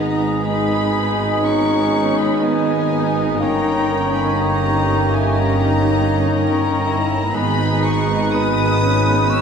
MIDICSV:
0, 0, Header, 1, 12, 480
1, 0, Start_track
1, 0, Key_signature, 5, "minor"
1, 0, Tempo, 981997
1, 1667, Time_signature, 4, 2, 24, 8
1, 4602, End_track
2, 0, Start_track
2, 0, Title_t, "Violin section"
2, 0, Program_c, 0, 48
2, 0, Note_on_c, 0, 82, 54
2, 221, Note_on_c, 0, 83, 71
2, 225, Note_off_c, 0, 82, 0
2, 700, Note_off_c, 0, 83, 0
2, 710, Note_on_c, 0, 85, 68
2, 1069, Note_on_c, 0, 83, 57
2, 1072, Note_off_c, 0, 85, 0
2, 1191, Note_off_c, 0, 83, 0
2, 1194, Note_on_c, 0, 80, 67
2, 1667, Note_off_c, 0, 80, 0
2, 1668, Note_on_c, 0, 82, 68
2, 2020, Note_off_c, 0, 82, 0
2, 2028, Note_on_c, 0, 83, 57
2, 2144, Note_on_c, 0, 82, 70
2, 2146, Note_off_c, 0, 83, 0
2, 2512, Note_off_c, 0, 82, 0
2, 2513, Note_on_c, 0, 80, 62
2, 2635, Note_off_c, 0, 80, 0
2, 2635, Note_on_c, 0, 82, 74
2, 3099, Note_off_c, 0, 82, 0
2, 3104, Note_on_c, 0, 82, 71
2, 3577, Note_off_c, 0, 82, 0
2, 3591, Note_on_c, 0, 83, 83
2, 3830, Note_off_c, 0, 83, 0
2, 3834, Note_on_c, 0, 85, 70
2, 4065, Note_on_c, 0, 87, 80
2, 4071, Note_off_c, 0, 85, 0
2, 4544, Note_off_c, 0, 87, 0
2, 4550, Note_on_c, 0, 88, 75
2, 4602, Note_off_c, 0, 88, 0
2, 4602, End_track
3, 0, Start_track
3, 0, Title_t, "Flute"
3, 0, Program_c, 1, 73
3, 0, Note_on_c, 1, 78, 51
3, 221, Note_off_c, 1, 78, 0
3, 224, Note_on_c, 1, 80, 55
3, 707, Note_on_c, 1, 82, 64
3, 714, Note_off_c, 1, 80, 0
3, 1069, Note_off_c, 1, 82, 0
3, 1071, Note_on_c, 1, 80, 54
3, 1195, Note_on_c, 1, 75, 49
3, 1202, Note_off_c, 1, 80, 0
3, 1544, Note_off_c, 1, 75, 0
3, 1667, Note_on_c, 1, 79, 55
3, 2025, Note_on_c, 1, 80, 56
3, 2033, Note_off_c, 1, 79, 0
3, 2144, Note_on_c, 1, 79, 59
3, 2151, Note_off_c, 1, 80, 0
3, 2505, Note_off_c, 1, 79, 0
3, 2508, Note_on_c, 1, 76, 53
3, 2630, Note_on_c, 1, 79, 64
3, 2638, Note_off_c, 1, 76, 0
3, 2979, Note_off_c, 1, 79, 0
3, 3109, Note_on_c, 1, 79, 56
3, 3591, Note_on_c, 1, 80, 63
3, 3598, Note_off_c, 1, 79, 0
3, 3826, Note_on_c, 1, 82, 61
3, 3833, Note_off_c, 1, 80, 0
3, 4067, Note_off_c, 1, 82, 0
3, 4069, Note_on_c, 1, 83, 76
3, 4545, Note_on_c, 1, 85, 80
3, 4552, Note_off_c, 1, 83, 0
3, 4602, Note_off_c, 1, 85, 0
3, 4602, End_track
4, 0, Start_track
4, 0, Title_t, "Oboe"
4, 0, Program_c, 2, 68
4, 0, Note_on_c, 2, 75, 46
4, 1650, Note_off_c, 2, 75, 0
4, 1672, Note_on_c, 2, 73, 57
4, 3441, Note_off_c, 2, 73, 0
4, 3586, Note_on_c, 2, 71, 56
4, 4602, Note_off_c, 2, 71, 0
4, 4602, End_track
5, 0, Start_track
5, 0, Title_t, "Violin section"
5, 0, Program_c, 3, 48
5, 0, Note_on_c, 3, 71, 51
5, 0, Note_on_c, 3, 75, 44
5, 208, Note_off_c, 3, 71, 0
5, 209, Note_off_c, 3, 75, 0
5, 227, Note_on_c, 3, 71, 46
5, 228, Note_on_c, 3, 68, 42
5, 700, Note_off_c, 3, 68, 0
5, 706, Note_on_c, 3, 68, 46
5, 1173, Note_off_c, 3, 71, 0
5, 1180, Note_off_c, 3, 68, 0
5, 1191, Note_on_c, 3, 71, 46
5, 1191, Note_on_c, 3, 75, 40
5, 1656, Note_off_c, 3, 71, 0
5, 1656, Note_off_c, 3, 75, 0
5, 1661, Note_on_c, 3, 70, 49
5, 1661, Note_on_c, 3, 79, 49
5, 2145, Note_off_c, 3, 70, 0
5, 2145, Note_off_c, 3, 79, 0
5, 2151, Note_on_c, 3, 75, 53
5, 2152, Note_on_c, 3, 67, 54
5, 3114, Note_off_c, 3, 67, 0
5, 3114, Note_on_c, 3, 70, 50
5, 3573, Note_off_c, 3, 75, 0
5, 3582, Note_off_c, 3, 70, 0
5, 3590, Note_on_c, 3, 75, 55
5, 3591, Note_on_c, 3, 68, 58
5, 4059, Note_off_c, 3, 75, 0
5, 4070, Note_off_c, 3, 68, 0
5, 4072, Note_on_c, 3, 71, 54
5, 4073, Note_off_c, 3, 71, 0
5, 4073, Note_on_c, 3, 71, 55
5, 4537, Note_off_c, 3, 71, 0
5, 4543, Note_on_c, 3, 71, 61
5, 4544, Note_on_c, 3, 68, 56
5, 4602, Note_off_c, 3, 68, 0
5, 4602, Note_off_c, 3, 71, 0
5, 4602, End_track
6, 0, Start_track
6, 0, Title_t, "Clarinet"
6, 0, Program_c, 4, 71
6, 0, Note_on_c, 4, 63, 47
6, 1646, Note_off_c, 4, 63, 0
6, 1663, Note_on_c, 4, 63, 56
6, 3437, Note_off_c, 4, 63, 0
6, 3586, Note_on_c, 4, 63, 58
6, 4602, Note_off_c, 4, 63, 0
6, 4602, End_track
7, 0, Start_track
7, 0, Title_t, "French horn section"
7, 0, Program_c, 5, 60
7, 0, Note_on_c, 5, 59, 43
7, 0, Note_on_c, 5, 63, 48
7, 1642, Note_off_c, 5, 63, 0
7, 1643, Note_off_c, 5, 59, 0
7, 1663, Note_on_c, 5, 63, 44
7, 1665, Note_on_c, 5, 61, 55
7, 3505, Note_off_c, 5, 61, 0
7, 3505, Note_off_c, 5, 63, 0
7, 3589, Note_on_c, 5, 59, 57
7, 3589, Note_on_c, 5, 63, 58
7, 4602, Note_off_c, 5, 59, 0
7, 4602, Note_off_c, 5, 63, 0
7, 4602, End_track
8, 0, Start_track
8, 0, Title_t, "Viola section"
8, 0, Program_c, 6, 48
8, 0, Note_on_c, 6, 59, 42
8, 0, Note_on_c, 6, 63, 45
8, 208, Note_off_c, 6, 59, 0
8, 224, Note_off_c, 6, 63, 0
8, 229, Note_on_c, 6, 63, 52
8, 471, Note_off_c, 6, 63, 0
8, 477, Note_on_c, 6, 63, 48
8, 711, Note_off_c, 6, 63, 0
8, 711, Note_on_c, 6, 59, 52
8, 713, Note_on_c, 6, 61, 52
8, 1183, Note_off_c, 6, 61, 0
8, 1190, Note_off_c, 6, 59, 0
8, 1196, Note_on_c, 6, 59, 58
8, 1197, Note_on_c, 6, 63, 56
8, 1429, Note_off_c, 6, 59, 0
8, 1435, Note_on_c, 6, 59, 48
8, 1664, Note_off_c, 6, 59, 0
8, 1674, Note_on_c, 6, 61, 47
8, 2140, Note_off_c, 6, 63, 0
8, 2146, Note_on_c, 6, 63, 44
8, 2148, Note_off_c, 6, 63, 0
8, 2148, Note_on_c, 6, 63, 52
8, 2151, Note_off_c, 6, 61, 0
8, 2624, Note_off_c, 6, 63, 0
8, 2629, Note_on_c, 6, 61, 55
8, 2629, Note_on_c, 6, 63, 52
8, 2863, Note_off_c, 6, 61, 0
8, 2869, Note_on_c, 6, 61, 57
8, 3099, Note_off_c, 6, 63, 0
8, 3104, Note_off_c, 6, 61, 0
8, 3108, Note_on_c, 6, 63, 54
8, 3110, Note_on_c, 6, 61, 60
8, 3349, Note_off_c, 6, 63, 0
8, 3350, Note_on_c, 6, 64, 54
8, 3583, Note_on_c, 6, 63, 53
8, 3586, Note_on_c, 6, 59, 52
8, 3590, Note_off_c, 6, 61, 0
8, 3590, Note_off_c, 6, 64, 0
8, 4062, Note_off_c, 6, 63, 0
8, 4068, Note_on_c, 6, 63, 61
8, 4302, Note_off_c, 6, 63, 0
8, 4311, Note_on_c, 6, 61, 59
8, 4525, Note_off_c, 6, 59, 0
8, 4540, Note_off_c, 6, 61, 0
8, 4546, Note_on_c, 6, 61, 60
8, 4552, Note_on_c, 6, 59, 61
8, 4602, Note_off_c, 6, 59, 0
8, 4602, Note_off_c, 6, 61, 0
8, 4602, End_track
9, 0, Start_track
9, 0, Title_t, "Bassoon"
9, 0, Program_c, 7, 70
9, 0, Note_on_c, 7, 56, 49
9, 1645, Note_off_c, 7, 56, 0
9, 1661, Note_on_c, 7, 58, 57
9, 3436, Note_off_c, 7, 58, 0
9, 3587, Note_on_c, 7, 56, 57
9, 4602, Note_off_c, 7, 56, 0
9, 4602, End_track
10, 0, Start_track
10, 0, Title_t, "Cello section"
10, 0, Program_c, 8, 48
10, 0, Note_on_c, 8, 44, 47
10, 1643, Note_off_c, 8, 44, 0
10, 1664, Note_on_c, 8, 43, 48
10, 3588, Note_on_c, 8, 44, 54
10, 3589, Note_off_c, 8, 43, 0
10, 4602, Note_off_c, 8, 44, 0
10, 4602, End_track
11, 0, Start_track
11, 0, Title_t, "Double bass section"
11, 0, Program_c, 10, 48
11, 0, Note_on_c, 10, 32, 43
11, 1646, Note_off_c, 10, 32, 0
11, 1665, Note_on_c, 10, 31, 50
11, 3590, Note_off_c, 10, 31, 0
11, 3590, Note_on_c, 10, 32, 52
11, 4602, Note_off_c, 10, 32, 0
11, 4602, End_track
12, 0, Start_track
12, 0, Title_t, "Tuba"
12, 0, Program_c, 11, 58
12, 0, Note_on_c, 11, 32, 49
12, 1664, Note_on_c, 11, 31, 53
12, 1672, Note_off_c, 11, 32, 0
12, 3508, Note_off_c, 11, 31, 0
12, 3591, Note_on_c, 11, 32, 55
12, 4602, Note_off_c, 11, 32, 0
12, 4602, End_track
0, 0, End_of_file